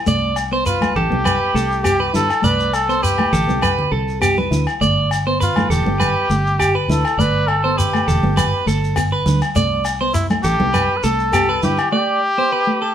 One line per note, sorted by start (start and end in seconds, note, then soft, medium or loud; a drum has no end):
0.06 0.92 C2 medium
0.06 0.33 A3 medium
0.06 0.36 D5 medium
0.06 shekere medium
0.36 low agogo medium
0.36 shekere medium
0.52 0.78 B3 medium
0.52 0.66 C5 medium
0.66 0.94 F4 medium
0.66 0.94 B4 medium
0.66 shekere medium
0.81 1.07 A3 medium
0.81 high conga medium
0.81 low agogo medium
0.81 shekere soft
0.96 1.10 A1 medium
0.96 2.11 G4 loud
0.96 1.24 A4 medium
0.96 low conga medium
1.10 1.39 C2 medium
1.10 1.37 B3 medium
1.10 high conga medium
1.25 1.54 B4 medium
1.25 high conga medium
1.25 low agogo medium
1.25 shekere medium
1.54 2.10 C2 medium
1.54 1.80 A3 medium
1.54 1.83 A4 medium
1.54 shekere medium
1.71 shekere soft
1.84 2.10 B3 medium
1.84 2.00 G4 medium
1.84 low agogo medium
1.84 shekere loud
2.00 2.28 B4 medium
2.14 2.29 G2 medium
2.14 2.40 E4 medium
2.14 2.46 A4 medium
2.14 high conga medium
2.14 low conga medium
2.14 shekere medium
2.30 low agogo medium
2.30 shekere soft
2.42 3.29 C2 medium
2.42 2.69 A3 medium
2.42 2.76 B4 loud
2.42 2.72 D5 medium
2.42 shekere medium
2.60 shekere soft
2.73 3.04 A4 medium
2.73 low agogo medium
2.73 shekere medium
2.89 3.15 B3 medium
2.89 3.03 C5 medium
2.89 shekere soft
3.03 3.92 G4 medium
3.03 3.31 B4 medium
3.03 shekere loud
3.18 3.45 A3 medium
3.18 high conga medium
3.18 low agogo medium
3.33 3.47 A1 medium
3.33 3.61 A4 medium
3.33 low conga medium
3.33 shekere medium
3.48 3.76 C2 medium
3.48 3.74 B3 medium
3.48 high conga medium
3.48 shekere soft
3.62 3.91 B4 medium
3.62 high conga medium
3.62 low agogo medium
3.62 shekere medium
3.79 low conga medium
3.92 4.47 C2 medium
3.92 4.20 A4 medium
4.09 shekere soft
4.21 4.47 B3 medium
4.21 4.37 G4 medium
4.21 low agogo medium
4.21 shekere medium
4.38 4.66 B4 medium
4.38 high conga medium
4.51 4.66 D2 medium
4.51 4.77 E4 medium
4.51 high conga medium
4.51 low conga medium
4.51 shekere medium
4.67 low agogo medium
4.67 shekere soft
4.81 5.66 G1 medium
4.81 5.07 A3 medium
4.81 5.09 D5 medium
4.81 shekere medium
5.11 low agogo medium
5.11 shekere medium
5.27 5.53 B3 medium
5.27 5.40 C5 medium
5.40 5.69 F4 medium
5.40 5.69 B4 medium
5.40 shekere medium
5.56 5.82 A3 medium
5.56 high conga medium
5.56 low agogo medium
5.56 shekere soft
5.70 5.84 E1 medium
5.70 6.85 G4 loud
5.70 5.98 A4 medium
5.70 low conga medium
5.70 shekere medium
5.86 6.13 G1 medium
5.86 6.12 B3 medium
5.86 high conga medium
6.00 6.28 B4 medium
6.00 high conga medium
6.00 low agogo medium
6.00 shekere medium
6.30 6.85 G1 medium
6.30 6.56 A3 medium
6.30 shekere medium
6.46 shekere soft
6.59 6.74 G4 medium
6.59 low agogo medium
6.59 shekere medium
6.75 7.03 B4 medium
6.88 7.03 D2 medium
6.88 7.15 E4 medium
6.88 7.22 A4 medium
6.88 high conga medium
6.88 low conga medium
6.88 shekere medium
7.05 low agogo medium
7.05 shekere soft
7.18 8.03 G1 medium
7.18 7.45 A3 medium
7.18 7.49 B4 loud
7.18 7.47 D5 medium
7.18 shekere medium
7.48 7.79 A4 medium
7.48 low agogo medium
7.64 7.90 B3 medium
7.64 7.77 C5 medium
7.78 8.67 G4 medium
7.78 8.06 B4 medium
7.78 shekere loud
7.93 8.20 A3 medium
7.93 low agogo medium
7.93 shekere soft
8.08 8.22 E1 medium
8.08 8.36 A4 medium
8.08 low conga medium
8.08 shekere medium
8.23 8.50 G1 medium
8.23 8.50 B3 medium
8.23 high conga medium
8.37 8.65 B4 medium
8.37 high conga medium
8.37 low agogo medium
8.37 shekere medium
8.66 9.22 G1 medium
8.66 8.92 A3 medium
8.66 8.95 A4 medium
8.66 shekere medium
8.84 shekere soft
8.96 9.22 B3 medium
8.96 muted clean electric guitar stroke medium
8.96 low agogo medium
8.96 shekere medium
9.12 9.40 B4 medium
9.26 9.40 D2 medium
9.26 muted clean electric guitar stroke medium
9.26 high conga medium
9.26 low conga medium
9.26 shekere medium
9.41 low agogo medium
9.41 shekere soft
9.56 10.41 C2 medium
9.56 9.81 A3 medium
9.56 9.84 D5 medium
9.56 shekere loud
9.85 low agogo medium
9.85 shekere medium
10.01 10.27 B3 medium
10.01 10.14 C5 medium
10.14 10.27 E4 medium
10.14 muted clean electric guitar stroke medium
10.14 shekere loud
10.30 10.56 A3 medium
10.30 high conga medium
10.30 low agogo medium
10.30 shekere soft
10.43 10.59 A1 medium
10.43 10.98 G4 loud
10.43 10.73 A4 medium
10.43 shekere medium
10.60 10.87 C2 medium
10.60 10.86 B3 medium
10.60 high conga medium
10.74 11.02 B4 medium
10.74 high conga medium
10.74 low agogo medium
10.74 shekere medium
10.97 11.05 B4 medium
11.04 11.59 C2 medium
11.04 11.30 A3 medium
11.04 11.32 A4 medium
11.04 11.63 A4 loud
11.04 shekere medium
11.19 shekere soft
11.33 11.60 B3 medium
11.33 11.48 G4 medium
11.33 low agogo medium
11.33 shekere medium
11.49 11.77 B4 medium
11.63 11.77 G2 medium
11.63 11.89 E4 medium
11.63 11.91 G4 medium
11.63 high conga medium
11.63 low conga medium
11.63 shekere medium
11.78 low agogo medium
11.78 shekere soft
11.92 12.18 A3 medium
11.92 12.95 G4 loud
11.92 12.20 D5 medium
12.38 12.63 B3 medium
12.38 12.51 C5 medium
12.52 12.80 B4 medium
12.67 12.93 A3 medium
12.82 12.95 A4 medium